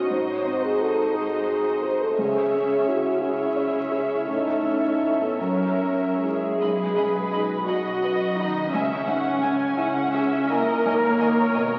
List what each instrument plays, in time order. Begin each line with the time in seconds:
Already playing: felt piano C#4 D#4 C#5, french horn section F#4, viola section F#4, violin section D#5
0.09 felt piano G#2, cello section G#2, viola section D#4, violin section C5, french horn section C5
0.30 french horn section C#5
0.45 felt piano C4, french horn section C5
0.64 french horn section G#4
0.80 felt piano F#4, french horn section A4
1.15 felt piano G#4, french horn section G#4
1.50 felt piano C5
1.84 felt piano G#4, french horn section C5
2.02 french horn section A4
2.18 felt piano C#2, cello section C#3, viola section C#4 G#4, french horn section G#4, violin section C#5 E5
2.53 felt piano C#4
2.87 felt piano E4, french horn section F#4
3.22 viola section C#4 G#4, french horn section E4, felt piano G#4, violin section C#5 E5
3.56 felt piano C#5
3.92 felt piano G#4
4.27 cello section A2, felt piano A2, viola section C#4 A4, french horn section D#4, violin section C#5 E5
4.63 felt piano C#4
5.02 felt piano E4 A4
5.21 french horn section B3
5.40 cello section F#2, felt piano F#2, viola section C#4 A#4, french horn section C#4, violin section C#5 E5
5.82 felt piano C#4
6.23 cello section G#3, felt piano E4 A#4, viola section G#4
6.61 double bass section B1, felt piano B1, violin section B4 D#5 B5
6.97 felt piano F#2, violin section D#5 B5
7.32 felt piano D#4, violin section D#5 B5
7.68 double bass section B1, cello section F#3, viola section F#4, felt piano F#4, violin section D#5 B5
8.03 felt piano B4, violin section D#5 B5
8.37 cello section D#3, viola section D#4, felt piano F#4, violin section D#5 B5
8.71 double bass section C#2, felt piano C#2, cello section C#3, viola section C#4, violin section E5 G#5
9.06 felt piano G#2, violin section E5 F#5 G#5
9.40 felt piano C#4, violin section E5 G#5
9.77 double bass section C#2, felt piano E4, violin section E5 F#5 G#5
10.13 felt piano G#4, violin section E5 G#5
10.48 cello section A#3, felt piano E4, viola section A#4, violin section D#5 E5 G#5
10.85 double bass section G#1, felt piano G#2, violin section C#5 D#5 G#5
11.20 felt piano D#3, violin section D#5 G#5
11.54 felt piano B2, violin section D#5 G#5